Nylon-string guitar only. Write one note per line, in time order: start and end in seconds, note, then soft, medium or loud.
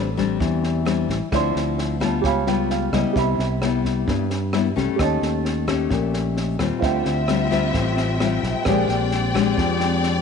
0.00 0.39 A2 medium
0.17 0.83 G3 medium
0.17 0.83 C4 medium
0.17 0.83 D4 medium
0.40 1.29 E3 medium
0.85 1.15 G3 soft
0.85 1.16 C4 soft
0.85 1.16 D4 medium
1.32 2.22 D3 medium
1.32 1.97 F3 medium
1.32 1.98 C4 soft
1.32 1.98 E4 medium
2.00 2.43 G3 medium
2.00 2.43 B3 medium
2.00 2.43 F4 medium
2.23 3.13 C#3 medium
2.47 2.89 G3 medium
2.47 2.89 B3 medium
2.47 2.90 F4 medium
2.94 3.35 G3 medium
2.94 3.35 B3 medium
2.94 3.36 E4 soft
3.16 4.05 C3 medium
3.62 4.24 G3 medium
3.62 4.24 B3 soft
3.62 4.24 E4 soft
4.09 4.98 G2 medium
4.54 4.67 G3 medium
4.54 4.67 B3 soft
4.54 4.67 E4 medium
4.76 5.64 A3 medium
4.76 5.64 C#4 medium
4.76 5.65 G4 medium
4.99 5.89 D#3 soft
5.67 6.56 A3 medium
5.67 6.56 C#4 medium
5.67 6.56 G4 medium
5.91 6.80 A#2 soft
6.59 7.24 G3 soft
6.59 7.25 C4 soft
6.59 7.25 F4 medium
6.82 7.72 D3 soft
7.29 7.48 G3 soft
7.29 7.48 C4 medium
7.29 7.48 F4 medium
7.51 8.16 G3 medium
7.51 8.16 C4 medium
7.51 8.17 F4 medium
7.74 8.64 A2 medium
8.20 8.62 G3 soft
8.20 8.62 C4 soft
8.20 8.62 F4 soft
8.67 9.56 A#2 soft
8.67 9.32 G#3 medium
8.67 9.32 D4 medium
8.67 9.32 G4 medium
9.34 10.22 G#3 medium
9.34 10.22 D4 medium
9.34 10.22 G4 medium
9.58 10.22 F3 medium